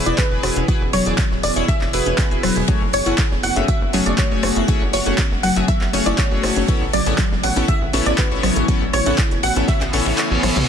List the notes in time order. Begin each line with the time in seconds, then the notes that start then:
Already playing: B2 E3 B3 E4 G#4 B4
0.06 E1 E4 D5, closed hi-hat
0.18 G#4 B4, kick, snare, clap, closed hi-hat, ride
0.31 E1 E4 G#4 B4
0.43 E1 F#4, cross-stick, open hi-hat, ride
0.56 E1 C#4, closed hi-hat
0.68 E4 F#4 G#4 B4, kick, closed hi-hat, ride
0.81 E1
0.93 E1 F#3 C#5, snare, open hi-hat, ride
1.06 E1 E4 G#4 D5, closed hi-hat
1.18 F#3, kick, snare, clap, closed hi-hat, ride
1.31 D1, snare
1.43 E1 C#5 D5, open hi-hat, ride
1.56 E1 E4 G#4 C#5, closed hi-hat
1.68 G#4 E5, kick, closed hi-hat, ride
1.81 E1, snare, clap
1.93 E1 E4 F#4 G#4 B4, open hi-hat, ride
2.06 E1 C#4, closed hi-hat
2.18 F#4, kick, snare, clap, closed hi-hat, ride
2.31 E1 E4 G#4 B4, closed hi-hat
2.43 E1 F#3, cross-stick, open hi-hat
2.56 E1 G#4, closed hi-hat
2.68 C#3 F#3 A3 C#4 F#4 G#4 C#5, kick, closed hi-hat, ride
2.81 F#1
2.93 F#1 C#5, open hi-hat, ride
3.06 F#1 A3 C#4 E4 F#4 G#4 F#5, closed hi-hat, ride
3.18 G#4, kick, snare, clap, closed hi-hat, ride
3.31 E1, snare
3.43 F#1 F#4 F#5, open hi-hat, ride
3.56 F#1 A3 C#4 F#4 G#4 E5, closed hi-hat
3.68 F#4 E5, kick, closed hi-hat, ride
3.81 F#1
3.93 F#1 F#3 A3 C#4 F#4 G#4 C#5, open hi-hat, ride
4.06 F#1 G#4 D5, closed hi-hat
4.18 F#3 C#5, kick, snare, clap, closed hi-hat, ride
4.31 F#1 A3 C#4 F#4 G#4 C#5
4.43 F#1 C#5, cross-stick, open hi-hat, ride
4.56 F#1 E4, closed hi-hat
4.68 A3 C#4 F#4 G#4 C#5, kick, closed hi-hat, ride
4.81 F#1
4.93 F#1 F#4 C#5, snare, open hi-hat, ride
5.06 F#1 A3 C#4 F#4 G#4 F#5, closed hi-hat
5.18 F#4, kick, snare, clap, closed hi-hat, ride
5.31 E1, snare
5.43 F#1 F#3 F#5, open hi-hat, ride
5.56 F#1 A3 C#4 F#4 G#4 E5, closed hi-hat
5.68 F#3 E5, kick, closed hi-hat, ride
5.81 F#1, snare, clap
5.93 F#1 A3 C#4 F#4 G#4 C#5, open hi-hat, ride
6.06 F#1 E4 D5, closed hi-hat
6.18 G#4 C#5, kick, snare, clap, closed hi-hat, ride
6.31 F#1 A3 C#4 F#4 G#4 C#5
6.43 F#1 F#4, cross-stick, open hi-hat
6.56 F#1 C#4, closed hi-hat
6.68 E3 A3 B3 C#4 E4 F#4 A4 C#5, kick, closed hi-hat, ride
6.81 A1
6.93 A1 F#3 D5, open hi-hat, ride
7.06 A1 B3 C#4 E4 G#4 A4 F#5, closed hi-hat, ride
7.18 F#3, kick, snare, clap, closed hi-hat, ride
7.31 E1, snare
7.43 A1 C#5 F#5, open hi-hat, ride
7.56 A1 B3 C#4 E4 A4 E5, closed hi-hat
7.68 G#4 E5, kick, closed hi-hat, ride
7.81 A1
7.93 A1 B3 C#4 E4 F#4 A4 C#5, snare, open hi-hat, ride
8.06 A1 C#4 D5, snare, closed hi-hat
8.18 F#4 B4, kick, clap, closed hi-hat, ride
8.31 A1 B3 C#4 E4 A4 C#5
8.43 A1 F#3, cross-stick, open hi-hat, ride
8.56 A1 G#4, closed hi-hat
8.68 F#3 B3 C#4 E4 A4 C#5, kick, closed hi-hat, ride
8.81 A1
8.93 A1 C#5, cross-stick, snare, open hi-hat, ride
9.06 A1 B3 C#4 E4 A4 F#5, closed hi-hat
9.18 G#4, kick, snare, clap, closed hi-hat, ride
9.31 E1, snare, closed hi-hat
9.43 A1 F#4 F#5, open hi-hat, ride
9.56 A1 B3 C#4 E4 A4 E5, closed hi-hat
9.68 F#4 E5, kick, snare, closed hi-hat, ride, reverse cymbal
9.81 A1, snare, clap, closed hi-hat, ride
9.93 A1 B3 C#4 E4 A4 C#5 F#5, snare, open hi-hat, ride
10.06 A1 E4, snare, open hi-hat, ride
10.18 C#5, snare, clap, closed hi-hat, ride
10.31 A1 B3 C#4 E4 A4 C#5
10.43 A1 A4, cross-stick, open hi-hat, high tom
10.56 B1 F#4, closed hi-hat, mid tom